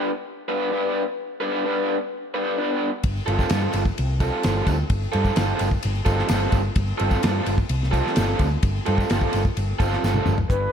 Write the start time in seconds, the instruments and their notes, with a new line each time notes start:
0.49 overdriven electric guitar G3 B3 D4 B4
0.71 overdriven electric guitar G3 B3 D4 B4
1.40 overdriven electric guitar G3 B3 D4 B4
1.65 overdriven electric guitar G3 B3 D4 B4
2.34 overdriven electric guitar G3 B3 D4 B4
2.58 overdriven electric guitar G3 B3 D4 B4
3.04 picked electric bass G1, kick, ride
3.17 tambourine
3.26 picked electric bass G1, overdriven electric guitar G3 C4 F4 A4, ride
3.39 kick, tambourine
3.50 picked electric bass G2, overdriven electric guitar G3 C4 F4 A4, snare, ride, tambourine
3.73 picked electric bass G1, ride, tambourine
3.85 kick, tambourine
3.98 picked electric bass C2, ride
4.20 overdriven electric guitar G3 C4 F4 A4, kick, ride, tambourine
4.43 picked electric bass G1, overdriven electric guitar G3 C4 F4 A4, snare, ride, tambourine
4.67 picked electric bass D2, kick, ride, tambourine
4.90 picked electric bass G1, kick, ride
5.03 tambourine
5.12 picked electric bass G2, overdriven electric guitar G3 C4 F4 A4, ride
5.25 kick, tambourine
5.36 picked electric bass G1, overdriven electric guitar G3 C4 F4 A4, snare, ride, tambourine
5.59 picked electric bass G1, ride, tambourine
5.71 kick, tambourine
5.83 picked electric bass G1, ride
5.95 tambourine
6.05 picked electric bass G1, overdriven electric guitar G3 C4 F4 A4, kick, ride, tambourine
6.19 snare
6.28 picked electric bass G1, overdriven electric guitar G3 C4 F4 A4, snare, ride, tambourine
6.41 tambourine
6.52 picked electric bass G1, kick, ride, tambourine
6.76 picked electric bass G1, kick, ride
6.88 tambourine
6.98 picked electric bass G1, overdriven electric guitar G3 C4 F4 A4, ride
7.11 kick, tambourine
7.22 picked electric bass G2, overdriven electric guitar G3 C4 F4 A4, snare, ride, tambourine
7.46 picked electric bass G1, ride, tambourine
7.58 kick, tambourine
7.69 picked electric bass C2, ride
7.83 snare
7.91 overdriven electric guitar G3 C4 F4 A4, kick, ride, tambourine
8.07 snare
8.15 picked electric bass G1, overdriven electric guitar G3 C4 F4 A4, snare, ride, tambourine
8.39 picked electric bass D2, kick, ride, tambourine
8.63 picked electric bass G1, kick, ride, tambourine
8.77 tambourine
8.86 picked electric bass G2, overdriven electric guitar G3 C4 F4 A4, ride, tambourine
8.98 kick, tambourine
9.10 picked electric bass G1, overdriven electric guitar G3 C4 F4 A4, snare, ride, tambourine
9.21 kick
9.33 picked electric bass G1, ride, tambourine
9.45 kick, tambourine
9.57 picked electric bass G1, ride, tambourine
9.79 picked electric bass G1, overdriven electric guitar G3 C4 F4 A4, kick, ride, tambourine
9.93 snare, tambourine
10.03 picked electric bass G1, overdriven electric guitar G3 C4 F4 A4, snare, tambourine
10.14 high tom, tambourine
10.26 picked electric bass G1, mid tom, tambourine
10.38 floor tom
10.49 picked electric bass G1, overdriven electric guitar G2, flute B4, kick, closed hi-hat